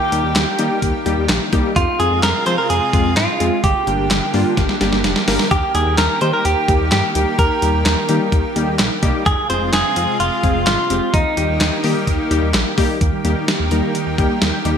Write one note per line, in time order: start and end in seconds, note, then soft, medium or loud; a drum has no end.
0.00 1.72 D#3 medium
0.00 1.72 A#3 medium
0.00 0.79 G4 medium
0.00 1.72 G4 medium
0.12 0.22 D#2 loud
0.12 0.32 G3 medium
0.12 0.32 A#3 medium
0.12 0.32 D#4 medium
0.12 0.32 G4 medium
0.12 closed hi-hat medium
0.24 0.34 D#2 loud
0.36 0.46 D#2 loud
0.36 snare loud
0.36 clap medium
0.36 closed hi-hat medium
0.59 0.69 D#3 medium
0.59 0.79 G3 medium
0.59 0.79 A#3 medium
0.59 0.79 D#4 medium
0.59 0.79 G4 medium
0.59 closed hi-hat medium
0.82 0.93 D#2 loud
0.82 kick medium
0.82 closed hi-hat medium
1.06 1.16 D#2 loud
1.06 1.26 G3 medium
1.06 1.26 A#3 medium
1.06 1.26 D#4 medium
1.06 1.26 G4 loud
1.06 closed hi-hat medium
1.18 1.28 D#2 loud
1.29 1.40 A#1 loud
1.29 snare loud
1.29 clap loud
1.29 closed hi-hat medium
1.53 1.63 C2 medium
1.53 1.73 G3 medium
1.53 1.73 A#3 medium
1.53 1.73 D#4 medium
1.53 1.73 G4 loud
1.53 kick medium
1.53 closed hi-hat medium
1.76 1.86 F2 loud
1.76 3.62 C3 medium
1.76 3.62 G#3 medium
1.76 2.00 F4 medium
1.76 3.62 F4 medium
1.76 kick loud
1.76 closed hi-hat medium
2.00 2.10 F2 loud
2.00 2.20 G#3 medium
2.00 2.20 C4 medium
2.00 2.20 F4 medium
2.00 2.21 G#4 medium
2.00 2.20 G#4 medium
2.00 closed hi-hat medium
2.11 2.22 F2 loud
2.23 2.33 F2 loud
2.23 2.46 A#4 loud
2.23 snare loud
2.23 clap loud
2.23 closed hi-hat medium
2.46 2.57 F3 loud
2.46 2.67 G#3 medium
2.46 2.67 C4 medium
2.46 2.67 F4 medium
2.46 2.67 G#4 medium
2.46 2.58 C5 loud
2.46 closed hi-hat medium
2.58 2.69 A#4 loud
2.70 2.80 F2 loud
2.70 3.13 G#4 loud
2.70 closed hi-hat medium
2.93 3.04 F2 loud
2.93 3.14 G#3 medium
2.93 3.14 C4 medium
2.93 3.14 F4 medium
2.93 3.14 G#4 medium
2.93 kick loud
2.93 closed hi-hat medium
3.05 3.15 F2 loud
3.17 3.27 G#2 medium
3.17 3.60 F4 medium
3.17 snare loud
3.17 clap loud
3.17 closed hi-hat medium
3.40 3.51 F2 medium
3.40 3.60 G#3 medium
3.40 3.60 C4 medium
3.40 3.60 F4 medium
3.40 3.60 G#4 medium
3.40 closed hi-hat medium
3.64 3.74 G1 loud
3.64 5.49 D3 medium
3.64 9.22 A#3 medium
3.64 9.22 G4 medium
3.64 5.00 G4 medium
3.64 kick loud
3.64 closed hi-hat medium
3.87 3.97 G1 loud
3.87 4.07 G3 medium
3.87 4.07 A#3 medium
3.87 4.07 D4 medium
3.87 4.07 G4 medium
3.87 closed hi-hat medium
3.99 4.09 G1 medium
4.11 4.21 G1 loud
4.11 snare loud
4.11 clap medium
4.11 closed hi-hat medium
4.34 4.44 G2 loud
4.34 4.54 G3 medium
4.34 4.54 A#3 medium
4.34 4.54 D4 medium
4.34 4.54 F4 loud
4.34 open hi-hat medium
4.57 4.68 G1 loud
4.57 kick medium
4.57 snare medium
4.57 closed hi-hat medium
4.69 snare medium
4.81 4.91 G1 loud
4.81 5.01 G3 medium
4.81 5.01 A#3 medium
4.81 5.01 D4 medium
4.81 5.01 G4 loud
4.81 snare medium
4.81 closed hi-hat medium
4.93 5.03 G1 medium
4.93 snare medium
5.04 5.15 F1 medium
5.04 snare medium
5.04 closed hi-hat medium
5.16 snare medium
5.28 5.38 G1 medium
5.28 5.48 G3 medium
5.28 5.48 A#3 medium
5.28 5.48 D4 medium
5.28 5.48 A#4 loud
5.28 snare loud
5.28 open hi-hat medium
5.39 snare medium
5.51 5.61 D#2 loud
5.51 9.22 D#3 medium
5.51 5.73 G4 loud
5.51 kick loud
5.51 closed hi-hat medium
5.75 5.85 D#2 medium
5.75 5.95 G3 medium
5.75 5.95 A#3 medium
5.75 5.95 D#4 medium
5.75 5.95 G4 medium
5.75 5.98 G#4 medium
5.75 closed hi-hat medium
5.86 5.97 D#2 loud
5.98 6.08 D#2 loud
5.98 6.20 A#4 loud
5.98 snare loud
5.98 clap loud
5.98 closed hi-hat medium
6.21 6.32 D#3 loud
6.21 6.42 G3 medium
6.21 6.42 A#3 medium
6.21 6.42 D#4 medium
6.21 6.42 G4 medium
6.21 6.32 C5 loud
6.21 closed hi-hat medium
6.33 6.44 A#4 loud
6.45 6.55 D#2 loud
6.45 6.91 G4 loud
6.45 closed hi-hat medium
6.68 6.79 D#2 loud
6.68 6.89 G3 medium
6.68 6.89 A#3 medium
6.68 6.89 D#4 medium
6.68 6.89 G4 medium
6.68 kick medium
6.68 closed hi-hat medium
6.80 6.90 D#2 medium
6.92 7.02 G2 loud
6.92 7.36 G4 medium
6.92 snare loud
6.92 clap medium
6.92 closed hi-hat medium
7.15 7.26 D2 medium
7.15 7.35 G3 medium
7.15 7.35 A#3 medium
7.15 7.35 D#4 medium
7.15 7.35 G4 medium
7.15 closed hi-hat medium
7.39 7.49 D#2 loud
7.39 8.75 A#4 medium
7.39 kick loud
7.39 closed hi-hat medium
7.62 7.72 D#2 loud
7.62 7.82 G3 medium
7.62 7.82 A#3 medium
7.62 7.82 D#4 medium
7.62 7.82 G4 medium
7.62 closed hi-hat medium
7.74 7.84 D#2 loud
7.86 7.96 D#2 loud
7.86 snare loud
7.86 clap loud
7.86 closed hi-hat medium
8.09 8.19 D#3 medium
8.09 8.29 G3 medium
8.09 8.29 A#3 medium
8.09 8.29 D#4 medium
8.09 8.29 G4 loud
8.09 closed hi-hat medium
8.32 8.43 D#2 loud
8.32 kick medium
8.32 closed hi-hat medium
8.56 8.66 D#2 loud
8.56 8.76 G3 medium
8.56 8.76 A#3 medium
8.56 8.76 D#4 medium
8.56 8.76 G4 medium
8.56 closed hi-hat medium
8.68 8.78 D#2 loud
8.79 8.90 A#1 loud
8.79 snare loud
8.79 clap loud
8.79 closed hi-hat medium
9.03 9.13 C2 medium
9.03 9.23 G3 medium
9.03 9.23 A#3 medium
9.03 9.23 D#4 medium
9.03 9.23 G4 loud
9.03 kick medium
9.03 closed hi-hat medium
9.26 9.36 F1 loud
9.26 11.12 C3 medium
9.26 11.12 G#3 medium
9.26 11.12 F4 medium
9.26 9.49 G#4 loud
9.26 kick loud
9.26 closed hi-hat medium
9.50 9.60 F1 loud
9.50 9.70 G#3 medium
9.50 9.70 C4 medium
9.50 9.70 F4 medium
9.50 9.70 G#4 medium
9.50 9.71 C5 loud
9.50 closed hi-hat medium
9.61 9.72 F1 medium
9.73 9.83 F1 loud
9.73 10.20 G#4 loud
9.73 snare loud
9.73 clap medium
9.73 closed hi-hat medium
9.96 10.07 F2 loud
9.96 10.17 G#3 medium
9.96 10.17 C4 medium
9.96 10.17 F4 medium
9.96 10.17 G#4 medium
9.96 closed hi-hat medium
10.20 10.30 F1 loud
10.20 10.66 F4 loud
10.20 closed hi-hat medium
10.43 10.54 F1 loud
10.43 10.64 G#3 medium
10.43 10.64 C4 medium
10.43 10.64 F4 medium
10.43 10.64 G#4 medium
10.43 kick loud
10.43 closed hi-hat medium
10.55 10.65 F1 medium
10.67 10.77 G#1 loud
10.67 11.15 F4 medium
10.67 snare loud
10.67 clap loud
10.67 closed hi-hat medium
10.90 11.01 F1 medium
10.90 11.10 G#3 medium
10.90 11.10 C4 medium
10.90 11.10 F4 medium
10.90 11.10 G4 medium
10.90 closed hi-hat medium
11.14 11.24 D#2 loud
11.14 12.99 D#3 medium
11.14 12.99 A#3 medium
11.14 12.50 D#4 medium
11.14 12.99 G4 medium
11.14 kick loud
11.14 closed hi-hat medium
11.37 11.47 D#2 loud
11.37 11.57 G3 medium
11.37 11.57 A#3 medium
11.37 11.57 D#4 medium
11.37 11.57 G4 medium
11.37 closed hi-hat medium
11.49 11.59 D#2 loud
11.61 11.71 D#2 loud
11.61 snare loud
11.61 clap medium
11.61 closed hi-hat medium
11.84 11.94 D#3 loud
11.84 12.04 G3 medium
11.84 12.04 A#3 medium
11.84 12.04 D#4 medium
11.84 12.04 G4 loud
11.84 open hi-hat medium
12.07 12.18 D#2 loud
12.07 kick medium
12.07 closed hi-hat medium
12.31 12.41 D#2 loud
12.31 12.51 G3 medium
12.31 12.51 A#3 medium
12.31 12.51 D#4 medium
12.31 12.51 G4 loud
12.31 closed hi-hat medium
12.43 12.53 D#2 medium
12.54 12.65 A#1 medium
12.54 snare loud
12.54 clap loud
12.54 closed hi-hat medium
12.78 12.88 C2 loud
12.78 12.98 G3 medium
12.78 12.98 A#3 medium
12.78 12.98 D#4 medium
12.78 12.98 G4 loud
12.78 kick medium
12.78 open hi-hat medium
13.01 13.11 D#2 loud
13.01 13.12 D#3 medium
13.01 14.78 D#3 medium
13.01 14.78 A#3 medium
13.01 14.78 G4 medium
13.01 kick loud
13.01 closed hi-hat medium
13.13 13.24 G3 medium
13.24 13.35 D#2 medium
13.24 13.35 D#3 medium
13.24 13.45 G3 medium
13.24 13.45 A#3 medium
13.24 13.45 D#4 medium
13.24 13.45 G4 loud
13.24 closed hi-hat medium
13.36 13.47 A#3 medium
13.48 13.59 D#3 medium
13.48 snare loud
13.48 closed hi-hat medium
13.60 13.70 D#2 medium
13.60 13.71 G4 medium
13.71 13.82 D#2 loud
13.71 13.82 D#3 medium
13.71 13.92 G3 medium
13.71 13.92 A#3 medium
13.71 13.92 D#4 medium
13.71 13.92 A#4 medium
13.71 closed hi-hat medium
13.83 13.94 D#5 medium
13.95 14.06 D#3 medium
13.95 closed hi-hat medium
14.06 14.17 D#2 medium
14.06 14.17 G5 medium
14.18 14.29 D#2 medium
14.18 14.38 G3 medium
14.18 14.39 A#3 medium
14.18 14.39 D#4 medium
14.18 14.39 G4 loud
14.18 kick medium
14.18 closed hi-hat medium
14.42 14.52 D#2 loud
14.42 14.53 D#3 medium
14.42 snare loud
14.42 closed hi-hat medium
14.54 14.64 G6 medium
14.65 14.75 D#2 loud
14.65 14.76 D#3 medium
14.65 14.78 G3 medium
14.65 14.78 A#3 medium
14.65 14.78 D#4 medium
14.65 14.78 G4 loud
14.65 closed hi-hat medium